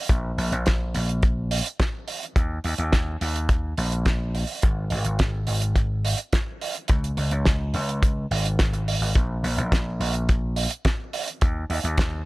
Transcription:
0.09 A#1, kick, closed hi-hat
0.38 A#1, open hi-hat
0.52 A#1, closed hi-hat
0.66 kick, snare, closed hi-hat
0.94 A#1, open hi-hat
1.09 closed hi-hat
1.23 kick, closed hi-hat
1.51 open hi-hat
1.66 closed hi-hat
1.80 kick, snare, closed hi-hat
2.08 open hi-hat
2.23 closed hi-hat
2.36 D#2, kick, closed hi-hat
2.64 D#2, open hi-hat
2.78 D#2, closed hi-hat
2.93 kick, snare, closed hi-hat
3.21 D#2, open hi-hat
3.36 closed hi-hat
3.49 kick, closed hi-hat
3.77 A#1, open hi-hat
3.92 closed hi-hat
4.06 kick, snare, closed hi-hat
4.35 open hi-hat
4.47 open hi-hat
4.62 G#1, kick, closed hi-hat
4.90 G#1, open hi-hat
5.04 G#1, closed hi-hat
5.19 kick, snare, closed hi-hat
5.47 G#1, open hi-hat
5.62 closed hi-hat
5.76 kick, closed hi-hat
6.05 open hi-hat
6.18 closed hi-hat
6.33 kick, snare, closed hi-hat
6.61 open hi-hat
6.75 closed hi-hat
6.88 C#2, kick, closed hi-hat
7.04 closed hi-hat
7.17 C#2, open hi-hat
7.31 C#2, closed hi-hat
7.45 kick, snare, closed hi-hat
7.74 C#2, open hi-hat
7.89 closed hi-hat
8.03 kick, closed hi-hat
8.31 G#1, open hi-hat
8.46 closed hi-hat
8.59 kick, snare, closed hi-hat
8.73 G#1, closed hi-hat
8.88 open hi-hat
9.01 G#1, open hi-hat
9.15 A#1, kick, closed hi-hat
9.43 A#1, open hi-hat
9.58 A#1, closed hi-hat
9.72 kick, snare, closed hi-hat
10.00 A#1, open hi-hat
10.14 closed hi-hat
10.29 kick, closed hi-hat
10.56 open hi-hat
10.71 closed hi-hat
10.85 kick, snare, closed hi-hat
11.13 open hi-hat
11.28 closed hi-hat
11.41 D#2, kick, closed hi-hat
11.70 D#2, open hi-hat
11.84 D#2, closed hi-hat
11.97 kick, snare, closed hi-hat

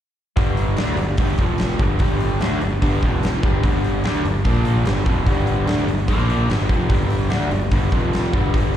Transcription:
0.36 G1 G2 D3 G3, kick, open hi-hat
0.57 open hi-hat
0.77 D2 D3 A3 D4, snare, open hi-hat
0.97 G1 G2 D3, open hi-hat
1.17 G1 G2 D3 G3, kick, open hi-hat
1.38 F1 F2 C3 F3, kick, open hi-hat
1.58 snare, open hi-hat
1.79 G1 G2 D3 G3, kick, open hi-hat
1.99 G1 G2 D3 G3, kick, open hi-hat
2.20 open hi-hat
2.41 D2 D3 A3 D4, snare, open hi-hat
2.61 G1 G2 D3, open hi-hat
2.82 G1 G2 D3 G3, kick, open hi-hat
3.02 F1 F2 C3 F3, kick, open hi-hat
3.23 snare, open hi-hat
3.43 G1 G2 D3 G3, kick, open hi-hat
3.63 G1 G2 D3 G3, kick, open hi-hat
3.84 open hi-hat
4.04 D2 D3 A3 D4, snare, open hi-hat
4.24 G1 G2 D3, open hi-hat
4.45 A#1 A#2 F3 A#3, kick, open hi-hat
4.65 open hi-hat
4.84 G1 G2 D3 G3, snare, open hi-hat
5.06 F1 F2 C3 F3, kick, open hi-hat
5.26 G1 G2 D3 G3, kick, open hi-hat
5.47 open hi-hat
5.66 D2 D3 A3 D4, snare, open hi-hat
5.86 G1 G2 D3, open hi-hat
6.08 A#1 A#2 F3 A#3, kick, open hi-hat
6.30 open hi-hat
6.48 G1 G2 D3 G3, snare, open hi-hat
6.69 F1 F2 C3 F3, kick, open hi-hat
6.89 G1 G2 D3 G3, kick, open hi-hat
7.10 open hi-hat
7.29 D2 D3 A3 D4, snare, open hi-hat
7.51 G1 G2 D3, open hi-hat
7.71 G1 G2 D3 G3, kick, open hi-hat
7.92 F1 F2 C3 F3, kick, open hi-hat
8.13 snare, open hi-hat
8.33 G1 G2 D3 G3, kick, open hi-hat
8.53 G1 G2 D3 G3, kick, open hi-hat

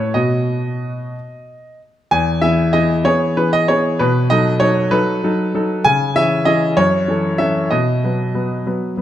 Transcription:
Already playing: A2 C#4 F#4 A4 B4 C#5
0.14 B2 B3 F#4 D#5
2.11 E2 G#5
2.42 E3 B3 G#4 E5
2.73 E3 B3 G#4 D#5
3.04 E3 B3 G#4 C#5
3.37 E3 B3 G#4 B4
3.53 D#5
3.68 E3 B3 G#4 C#5
3.99 B2 B4
4.30 F#3 D#4 A4 D#5
4.60 F#3 D#4 A4 C#5
4.91 F#3 D#4 A4 B4
5.24 F#3 D#4 A4
5.55 F#3 D#4 A4
5.84 C#3 G#5
6.16 E3 C#4 G#4 E5
6.45 E3 C#4 G#4 D#5
6.77 F#2 C#5
7.08 E3 C#4 A4
7.38 E3 C#4 A4 E5
7.71 B2 D#5
8.04 F#3 B3 B4
8.35 F#3 B3 B4
8.66 F#3 B3 B4
8.97 F#3 B3 B4

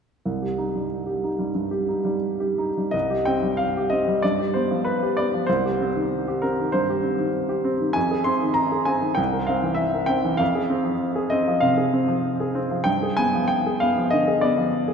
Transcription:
0.26 C2
0.42 G4
0.58 D#4
0.76 G3
1.07 G4
1.24 D#4
1.39 G3
1.55 G2
1.71 G4
1.88 D#4
2.05 G3
2.40 G4
2.58 D#4
2.77 G3
2.91 C2 D#5
3.10 G4
3.25 C4 G5
3.43 G3
3.57 F5
3.77 G4
3.90 C4 D#5
4.08 G3
4.22 G2 D5
4.39 G4
4.54 B3 C5
4.71 F3
4.85 B4
5.03 G4
5.17 B3 D5
5.34 F3
5.47 C2 C5
5.65 G4
5.81 C4
5.96 D#3
6.28 G4
6.42 C4 A#4
6.60 D#3
6.72 G2 C5
6.90 G4
7.03 C4
7.18 D#3
7.49 G4
7.64 C4
7.81 D#3
7.93 F2 G#5
8.11 G#4
8.24 C4 C6
8.43 D#3
8.54 A#5
8.72 G#4
8.85 C4 G#5
9.01 D#3
9.15 C2 G5
9.32 A#4
9.47 C4 F5
9.63 E3
9.75 E5
9.93 A#4
10.06 C4 G5
10.25 E3
10.37 F2 F5
10.55 G#4
10.70 C4
10.84 F3
11.16 G#4
11.30 C4 D#5
11.48 F3
11.60 C3 F5
11.77 G#4
11.93 C4
12.08 F3
12.40 G#4
12.55 C4
12.71 F3
12.84 G2 G5
13.03 G#4
13.17 B3 G#5
13.35 F3
13.48 G5
13.66 G#4
13.80 B3 F5
13.97 F3
14.11 D3 D#5
14.28 G#4
14.41 B3 D5
14.58 F3
14.88 G#4

